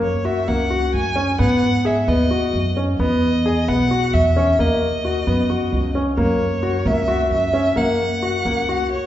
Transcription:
0.00 0.45 F#2 medium
0.00 0.27 C#5 medium
0.25 0.38 F#4 medium
0.25 0.50 E5 medium
0.48 0.90 C#2 medium
0.48 0.61 A#3 medium
0.48 0.94 F#5 medium
0.70 0.97 F#4 medium
0.94 1.35 F#2 medium
0.94 1.37 G#5 medium
1.16 1.29 C#4 medium
1.39 2.04 G#2 medium
1.39 1.65 B3 medium
1.39 1.88 F#5 medium
1.85 1.98 G#4 medium
1.85 2.11 E5 medium
2.08 2.50 D#2 medium
2.08 2.21 B3 medium
2.08 2.77 D#5 medium
2.31 2.57 F#4 medium
2.53 2.95 F#2 medium
2.77 2.90 C#4 medium
2.99 3.64 E2 medium
2.99 3.26 B3 medium
2.99 3.70 D#5 medium
3.46 3.59 G#4 medium
3.68 4.10 B1 medium
3.68 3.81 B3 medium
3.68 4.16 F#5 medium
3.91 4.17 F#4 medium
4.14 4.55 E2 medium
4.14 4.61 E5 medium
4.37 4.49 C#4 medium
4.59 5.23 D#2 medium
4.59 4.85 A#3 medium
4.59 5.95 D#5 medium
5.05 5.18 F#4 medium
5.27 5.69 F#2 medium
5.27 5.40 B3 medium
5.50 5.76 F#4 medium
5.72 6.14 C#2 medium
5.95 6.08 C#4 medium
6.17 6.81 F#2 medium
6.17 6.43 A#3 medium
6.17 6.88 C#5 medium
6.63 6.76 F#4 medium
6.85 7.27 C#2 medium
6.85 6.98 A#3 medium
6.85 7.31 E5 medium
7.08 7.34 F#4 medium
7.31 7.72 F#2 medium
7.31 7.79 E5 medium
7.53 7.66 C#4 medium
7.76 8.41 F#2 medium
7.76 8.02 A#3 medium
7.76 8.92 F#5 medium
8.23 8.36 F#4 medium
8.45 8.88 C#2 medium
8.45 8.59 A#3 medium
8.69 8.95 F#4 medium
8.92 9.06 C#5 medium

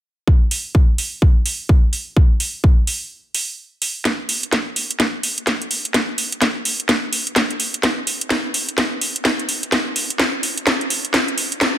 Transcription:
0.28 kick loud
0.51 open hi-hat medium
0.75 kick loud
0.98 open hi-hat medium
1.22 kick loud
1.46 open hi-hat medium
1.69 kick loud
1.93 open hi-hat medium
2.17 kick loud
2.40 open hi-hat medium
2.64 kick loud
2.87 open hi-hat medium
3.35 open hi-hat loud
3.82 open hi-hat medium
4.05 kick loud
4.05 snare soft
4.05 closed hi-hat medium
4.29 open hi-hat medium
4.43 closed hi-hat soft
4.53 kick loud
4.53 snare soft
4.53 closed hi-hat medium
4.76 open hi-hat medium
4.91 closed hi-hat medium
5.00 kick loud
5.00 snare soft
5.00 closed hi-hat medium
5.23 open hi-hat medium
5.38 closed hi-hat medium
5.47 kick loud
5.47 snare soft
5.47 closed hi-hat medium
5.62 closed hi-hat soft
5.71 open hi-hat medium
5.85 closed hi-hat medium
5.94 kick loud
5.94 snare medium
5.94 closed hi-hat medium
6.18 open hi-hat loud
6.32 closed hi-hat medium
6.42 kick loud
6.42 snare medium
6.42 closed hi-hat medium
6.65 open hi-hat medium
6.80 closed hi-hat soft
6.89 kick loud
6.89 snare medium
6.89 closed hi-hat medium
7.13 open hi-hat loud
7.27 closed hi-hat soft
7.36 kick loud
7.36 snare medium
7.36 closed hi-hat medium
7.51 closed hi-hat soft
7.60 open hi-hat medium
7.74 closed hi-hat soft
7.83 kick loud
7.83 snare medium
7.83 closed hi-hat medium
8.07 open hi-hat loud
8.21 closed hi-hat soft
8.31 kick loud
8.31 snare medium
8.31 closed hi-hat medium
8.54 open hi-hat loud
8.69 closed hi-hat soft
8.78 kick loud
8.78 snare medium
8.78 closed hi-hat medium
9.01 open hi-hat loud
9.16 closed hi-hat soft
9.25 kick loud
9.25 snare medium
9.25 closed hi-hat medium
9.39 closed hi-hat soft
9.49 open hi-hat medium
9.63 closed hi-hat soft
9.72 kick loud
9.72 snare medium
9.72 closed hi-hat medium
9.96 open hi-hat loud
10.10 closed hi-hat soft
10.20 kick loud
10.20 snare medium
10.20 closed hi-hat medium
10.43 open hi-hat medium
10.58 closed hi-hat soft
10.67 kick loud
10.67 snare medium
10.67 closed hi-hat medium
10.81 closed hi-hat soft
10.90 open hi-hat loud
11.05 closed hi-hat soft
11.14 kick loud
11.14 snare medium
11.14 closed hi-hat medium
11.28 closed hi-hat soft
11.38 open hi-hat medium
11.52 closed hi-hat soft
11.61 kick loud
11.61 snare medium
11.61 closed hi-hat medium

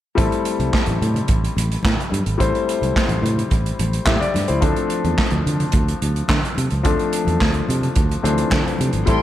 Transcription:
0.15 0.27 A1 loud
0.15 2.35 G3 medium
0.15 2.35 A3 medium
0.15 2.36 C4 medium
0.15 2.36 E4 medium
0.15 2.36 A4 medium
0.15 kick loud
0.15 closed hi-hat medium
0.31 closed hi-hat soft
0.31 muted conga soft
0.45 closed hi-hat medium
0.59 0.69 C2 medium
0.59 closed hi-hat soft
0.59 high conga medium
0.74 kick loud
0.74 snare medium
0.74 clap medium
0.86 0.97 A1 medium
0.86 closed hi-hat soft
0.86 muted conga soft
0.86 high conga medium
1.01 1.20 A2 medium
1.01 closed hi-hat medium
1.01 high conga soft
1.01 low conga medium
1.14 closed hi-hat soft
1.14 low conga medium
1.28 1.48 A1 medium
1.28 kick loud
1.28 closed hi-hat medium
1.28 muted conga soft
1.44 closed hi-hat soft
1.56 1.76 A1 medium
1.56 closed hi-hat medium
1.56 high conga medium
1.71 closed hi-hat soft
1.83 1.94 A2 medium
1.83 kick loud
1.83 snare loud
1.83 clap medium
1.83 muted conga soft
1.83 high conga medium
1.97 closed hi-hat soft
1.97 low conga medium
2.10 2.22 G2 medium
2.10 closed hi-hat medium
2.10 high conga medium
2.26 2.36 G#1 medium
2.26 closed hi-hat soft
2.38 2.50 A1 loud
2.38 4.57 G3 medium
2.38 4.58 A3 medium
2.38 4.58 C4 medium
2.38 3.76 E4 medium
2.38 3.77 C5 medium
2.38 kick medium
2.38 closed hi-hat medium
2.53 closed hi-hat soft
2.53 muted conga soft
2.69 closed hi-hat medium
2.81 2.91 C2 medium
2.81 closed hi-hat soft
2.81 high conga medium
2.96 kick medium
2.96 snare medium
2.96 clap medium
3.08 3.19 A1 medium
3.08 closed hi-hat soft
3.08 muted conga soft
3.08 high conga medium
3.22 3.42 A2 medium
3.22 closed hi-hat medium
3.22 high conga medium
3.22 low conga medium
3.36 closed hi-hat soft
3.36 low conga medium
3.50 3.71 A1 medium
3.50 kick loud
3.50 closed hi-hat medium
3.50 muted conga soft
3.66 closed hi-hat soft
3.79 3.98 A1 medium
3.79 closed hi-hat medium
3.79 high conga medium
3.93 closed hi-hat soft
4.05 4.17 A2 loud
4.05 4.21 G4 soft
4.05 4.20 E5 soft
4.05 kick loud
4.05 snare loud
4.05 clap medium
4.05 muted conga soft
4.05 high conga medium
4.20 4.47 D5 medium
4.20 closed hi-hat soft
4.20 muted conga soft
4.20 low conga medium
4.34 4.45 G2 medium
4.34 snare soft
4.34 closed hi-hat medium
4.34 high conga medium
4.48 4.59 C#2 medium
4.48 4.75 E4 medium
4.48 4.75 C5 medium
4.48 closed hi-hat soft
4.61 4.72 D2 loud
4.61 6.80 F3 medium
4.61 6.81 A3 medium
4.61 6.81 C4 medium
4.61 6.81 D4 medium
4.61 6.82 A4 medium
4.61 kick loud
4.61 closed hi-hat medium
4.61 muted conga soft
4.76 closed hi-hat soft
4.90 closed hi-hat medium
5.04 5.14 E2 medium
5.04 closed hi-hat soft
5.04 high conga medium
5.18 kick loud
5.18 snare medium
5.18 clap medium
5.30 5.42 D2 medium
5.30 closed hi-hat soft
5.30 muted conga soft
5.30 high conga medium
5.46 5.65 D3 medium
5.46 closed hi-hat medium
5.46 high conga medium
5.46 low conga medium
5.60 closed hi-hat soft
5.60 low conga medium
5.72 5.93 D2 medium
5.72 kick loud
5.72 closed hi-hat medium
5.88 closed hi-hat soft
6.02 6.21 D2 medium
6.02 closed hi-hat medium
6.02 high conga medium
6.16 closed hi-hat soft
6.28 6.39 D3 loud
6.28 kick loud
6.28 snare loud
6.28 clap medium
6.28 high conga medium
6.41 closed hi-hat soft
6.41 low conga medium
6.55 6.67 C3 medium
6.55 closed hi-hat medium
6.55 high conga medium
6.70 6.85 C#2 medium
6.70 closed hi-hat soft
6.83 6.95 D2 loud
6.83 8.20 F3 medium
6.83 8.21 A3 medium
6.83 8.21 C4 medium
6.83 8.21 D4 medium
6.83 8.22 A4 medium
6.83 kick loud
6.83 closed hi-hat medium
6.83 muted conga soft
6.98 closed hi-hat soft
6.98 muted conga soft
7.13 closed hi-hat medium
7.25 7.36 E2 medium
7.25 closed hi-hat soft
7.25 high conga medium
7.41 7.60 D2 medium
7.41 kick medium
7.41 snare medium
7.41 clap medium
7.53 closed hi-hat soft
7.53 muted conga soft
7.53 high conga medium
7.68 7.88 C3 medium
7.68 closed hi-hat medium
7.68 high conga medium
7.68 low conga medium
7.81 closed hi-hat soft
7.81 low conga medium
7.95 8.15 D2 medium
7.95 kick loud
7.95 closed hi-hat medium
7.95 muted conga soft
8.09 closed hi-hat soft
8.09 muted conga soft
8.23 8.43 D2 medium
8.23 8.30 E3 soft
8.23 9.05 A3 soft
8.23 9.06 C4 soft
8.23 9.07 D4 medium
8.23 9.07 C5 medium
8.23 closed hi-hat medium
8.23 high conga medium
8.29 9.10 F3 medium
8.38 closed hi-hat soft
8.50 8.61 D3 medium
8.50 kick loud
8.50 snare loud
8.50 clap medium
8.50 muted conga soft
8.50 high conga medium
8.65 closed hi-hat soft
8.65 muted conga soft
8.65 low conga medium
8.79 8.89 C3 medium
8.79 closed hi-hat medium
8.79 high conga medium
8.93 9.03 G#1 medium
8.93 closed hi-hat soft
9.06 9.17 A1 loud
9.06 9.22 G3 medium
9.06 9.22 A3 medium
9.06 9.22 C4 medium
9.06 9.22 E4 medium
9.06 9.22 A4 medium
9.06 9.22 G5 medium
9.06 9.22 C6 medium
9.06 kick loud
9.06 closed hi-hat medium

